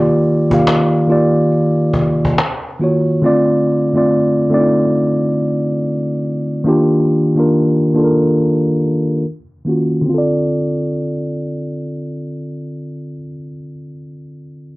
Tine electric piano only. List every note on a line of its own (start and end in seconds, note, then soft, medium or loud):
0.00 0.27 D#3 medium
0.00 0.28 A#3 medium
0.00 0.28 F4 medium
0.00 0.29 G4 medium
0.00 0.29 D5 medium
0.50 0.96 D#3 medium
0.50 0.97 A#3 medium
0.50 0.97 F4 medium
0.50 0.98 G4 medium
0.54 0.98 F5 medium
1.08 2.34 D#3 medium
1.08 2.35 A#3 medium
1.08 2.35 F4 medium
1.08 2.36 G4 medium
1.12 2.36 D5 medium
2.79 3.15 D#3 medium
2.79 3.15 A#3 medium
2.79 3.16 F4 medium
2.79 3.16 F#4 medium
2.84 3.17 C#5 medium
3.22 3.70 D3 medium
3.22 3.71 A3 medium
3.22 3.72 C4 medium
3.22 3.72 F4 medium
3.26 3.73 D5 medium
3.94 4.39 D3 medium
3.94 4.40 A3 medium
3.94 4.40 C4 medium
3.94 4.41 F4 medium
3.98 4.42 D5 medium
4.50 5.77 D3 medium
4.50 5.77 A3 medium
4.50 5.78 C4 medium
4.50 4.61 D#4 soft
4.54 5.79 D5 medium
4.60 5.82 F4 medium
6.64 7.13 D#3 medium
6.64 7.14 A#3 medium
6.64 7.14 D4 medium
6.64 7.15 F4 medium
6.69 7.15 G4 medium
7.35 7.82 D#3 medium
7.35 7.82 A#3 medium
7.35 7.83 D4 medium
7.35 7.83 F4 medium
7.40 7.84 A#4 medium
7.94 9.20 D#3 medium
7.94 9.21 A#3 medium
7.94 9.21 D4 medium
7.94 9.22 F4 medium
7.98 8.05 A4 medium
8.04 9.25 A#4 medium
9.65 10.00 D#3 medium
9.65 10.01 A#3 soft
9.65 10.01 C#4 soft
9.65 10.02 F4 soft
9.69 10.02 F#4 medium
10.01 13.13 D3 medium
10.05 13.17 C4 medium
10.10 13.21 F4 medium
10.14 13.25 A4 medium
10.18 13.29 D5 medium